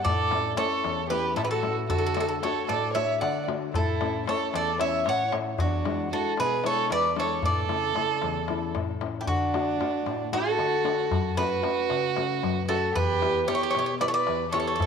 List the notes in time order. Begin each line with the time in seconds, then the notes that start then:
0.04 A2 A4 D5, darbuka dum
0.18 darbuka tek
0.31 A3 C#4 E4, darbuka tek
0.45 darbuka tek
0.57 A3 C#4 E4 A4 C#5, darbuka tek
0.71 darbuka tek
0.84 E2, darbuka tek
1.09 A3 C#4 E4 G4 B4, darbuka tek
1.24 darbuka tek
1.36 A2 E4 A4, darbuka tek
1.44 G4 B4
1.49 F#4 A4
1.63 A3 C#4 E4, darbuka tek
1.76 darbuka tek
1.88 D3 F#4 A4, darbuka dum
1.98 A4
2.03 A4, darbuka tek
2.14 A3 D4 F#4 A4, darbuka tek
2.20 A4
2.29 A4
2.42 A3 D4 F#4 A4 C#5, darbuka tek
2.56 darbuka tek
2.67 A2 A4 D5, darbuka tek
2.93 A3 D4 F#4 C#5 E5, darbuka tek
3.21 D3 D5 F#5, darbuka tek
3.48 A3 D4 F#4, darbuka tek
3.61 darbuka tek
3.73 A2 E4 A4, darbuka dum
3.87 darbuka tek
4.01 A3 C#4 E4, darbuka tek
4.27 A3 C#4 E4 A4 C#5, darbuka tek
4.41 darbuka tek
4.53 E2 A4 D5, darbuka tek
4.79 A3 C#4 E4 C#5 E5, darbuka tek
5.06 A2 C#5 F#5, darbuka tek
5.32 A3 C#4 E4, darbuka tek
5.46 darbuka tek
5.58 E2 D4 F#4, darbuka dum
5.72 darbuka tek
5.85 G#3 D4 E4, darbuka tek
6.12 G#3 D4 E4 F#4 A4
6.25 darbuka tek
6.37 B2 G#4 B4, darbuka tek
6.64 G#3 D4 E4 A4 C#5, darbuka tek
6.90 E2 B4 D5, darbuka tek
7.16 G#3 D4 E4 A4, darbuka tek
7.20 C#5
7.29 darbuka tek
7.42 A2 A4 D5, darbuka dum
7.56 darbuka tek
7.69 C#3 A3 E4, darbuka tek
7.95 C#3 A3 E4, darbuka tek
8.09 darbuka tek
8.22 E2, darbuka tek
8.35 darbuka tek
8.48 A3 C#4 E4, darbuka tek
8.61 darbuka tek
8.75 A2, darbuka tek, darbuka dum
8.88 darbuka tek
9.01 A3 C#4 E4, darbuka tek
9.14 darbuka tek
9.21 E4 G4
9.26 D3 D4 F#4, darbuka dum
9.54 A3 D4 F#4, darbuka tek
9.80 A3 D4 F#4, darbuka tek
9.94 darbuka tek
10.06 A2, darbuka tek
10.20 darbuka tek
10.32 A3 D4 F#4 A4, darbuka tek
10.59 D3, darbuka tek
10.73 darbuka tek
10.84 A3 D4 F#4, darbuka tek
10.99 darbuka tek
11.11 F#2, darbuka dum
11.37 A3 C#4 F#4 B4, darbuka tek
11.63 A3 C#4 F#4, darbuka tek
11.77 darbuka tek
11.90 C#3, darbuka tek
12.03 darbuka tek
12.16 A3 C#4 F#4, darbuka tek
12.43 F#2, darbuka tek
12.56 darbuka tek
12.68 A3 C#4 F#4 A4, darbuka tek
12.82 darbuka tek
12.94 E2 G4 B4, darbuka dum
13.22 B3 E4 G4, darbuka tek
13.47 B3 E4 G4 C#5, darbuka tek
13.55 C#5
13.62 C#5, darbuka tek
13.71 C#5
13.75 B2 C#5, darbuka tek
13.86 C#5, darbuka tek
14.00 B3 E4 G4 B4 D5, darbuka tek
14.08 A4 C#5
14.13 B4 D5
14.27 E2, darbuka tek
14.40 darbuka tek
14.52 B3 E4 G4 A4 C#5, darbuka tek
14.60 C#5
14.67 C#5, darbuka tek
14.76 A2 C#5
14.80 C#5, darbuka dum